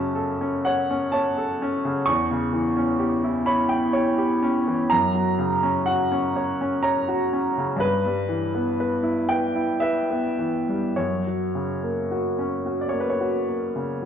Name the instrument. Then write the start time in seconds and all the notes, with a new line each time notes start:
grand piano
Already playing: F#2 C#3 F#3 C#4 A5
0.15 A4
0.41 C#4
0.65 C#5 F#5
0.91 C#4
1.12 C#5 A5
1.38 A4
1.62 C#4
1.85 C#3
2.06 E2 C#6
2.31 C#3
2.53 E3
2.77 C#4
2.99 G4
3.24 E4
3.46 C#5 B5
3.69 G5
3.93 C#5
4.18 G4
4.43 C#4
4.67 E3
4.90 F#2 A#5
5.15 F#3
5.39 C#3
5.63 C#4
5.86 F#4 F#5
6.12 C#4
6.36 C#5
6.61 C#4
6.83 C#5 A#5
7.08 F#4
7.33 C#4
7.58 C#3
7.76 G2 B4
8.06 G3
8.29 E3
8.55 B3
8.80 B4
9.03 E4
9.29 B4 G5
9.55 E4
9.80 B4 E5
10.10 B3
10.39 E3
10.69 G3
10.96 F#2 C#5
11.27 F#3
11.55 C#3
11.83 A#3
12.11 F#4
12.39 C#4
12.66 F#4
12.81 D5
12.89 C#5
12.93 A#3
13.00 B4
13.10 C#5
13.21 F#4
13.48 A#3
13.76 C#3